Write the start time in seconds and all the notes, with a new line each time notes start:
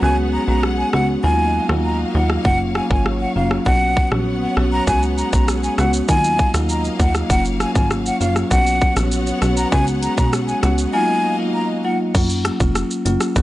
Already playing: B3 C#5
0.02 C#2 G#3 B3 C#4 F#4 G#4 F#5 G#5
0.33 A#5
0.48 B1 G#3 B3 C#4 F#4 A#5
0.63 cross-stick
0.78 G#5
0.93 C#2 G#3 B3 C#4 F#4 F#5, cross-stick
1.24 D#2 F#3 A#3 D#4 F4 F#4 D#5 F5 G#5
1.69 D#2 F#3 A#3 D#4 F4, cross-stick
1.85 A#5
2.15 D#2 F#3 A#3 D#4 F4 F#5
2.30 cross-stick
2.45 F#1 F#3 A#3 C#4 F4 C#5 F#5, kick
2.75 G#5, cross-stick
2.90 G#1 F#3 A#3 C#4 F4 G#5, kick
3.06 cross-stick
3.21 F#5
3.35 F#1 F#3 A#3 C#4 F4 F5
3.51 cross-stick
3.66 B1 F#3 B3 C#4 F#4 C#5 F#5, kick
3.97 kick
4.12 A#1 F#3 B3 C#4 F#4, cross-stick
4.42 F#5
4.57 B1 F#3 B3 C#4 F#4, cross-stick
4.72 A#5
4.87 C#2 G#3 B3 C#4 F#4 G#4 G#5, kick, shaker
5.02 shaker
5.18 A#5, shaker
5.33 B1 G#3 B3 C#4 F#4 A#5, kick, shaker
5.48 cross-stick, shaker
5.63 G#5, shaker
5.78 C#2 G#3 B3 C#4 F#4 F#5, cross-stick, shaker
5.93 shaker
6.08 D#2 F#3 A#3 D#4 F4 D#5 F5 G#5, kick, shaker
6.24 shaker
6.39 kick, shaker
6.54 D#2 F#3 A#3 D#4 F4, cross-stick, shaker
6.69 A#5, shaker
6.84 shaker
6.99 D#2 F#3 A#3 D#4 F4 F#5, kick, shaker
7.15 cross-stick, shaker
7.30 F#1 F#3 A#3 C#4 F4 C#5 F#5, kick, shaker
7.45 shaker
7.60 G#5, cross-stick, shaker
7.75 G#1 F#3 A#3 C#4 F4 G#5, kick, shaker
7.91 cross-stick, shaker
8.06 F#5, shaker
8.20 F#1 F#3 A#3 C#4 F4 F5, shaker
8.36 cross-stick, shaker
8.51 B1 F#3 B3 C#4 F#4 F#5, kick, shaker
8.67 shaker
8.81 kick, shaker
8.96 A#1 F#3 B3 C#4 F#4, cross-stick, shaker
9.12 shaker
9.27 F#5, shaker
9.42 B1 F#3 B3 C#4 F#4, cross-stick, shaker
9.57 A#5, shaker
9.72 C#2 G#3 B3 C#4 F#4 G#4 G#5, kick, shaker
9.87 shaker
10.02 A#5, closed hi-hat, shaker
10.17 B1 G#3 B3 C#4 F#4 A#5, kick, shaker
10.33 cross-stick, shaker
10.48 G#5, shaker
10.63 C#2 G#3 B3 C#4 F#4 F#5, cross-stick, closed hi-hat, shaker
10.78 shaker
10.93 F#3 A#3 D#4 F4 F#4 D#5 F5 G#5
11.39 F#3 A#3 D#4 F4
11.54 A#5
11.84 F#3 A#3 D#4 F4 F#5
12.15 F#1 F#3 A#3 C#4 F4, kick, crash, shaker
12.30 shaker
12.45 cross-stick, closed hi-hat, shaker
12.60 F1 F#3 A#3 C#4 F4, kick, shaker
12.75 cross-stick, shaker
12.91 shaker
13.06 F#1 F#3 A#3 C#4 F4, closed hi-hat, shaker
13.21 cross-stick, shaker
13.36 B1 F#3 B3 C#4 F#4, kick, shaker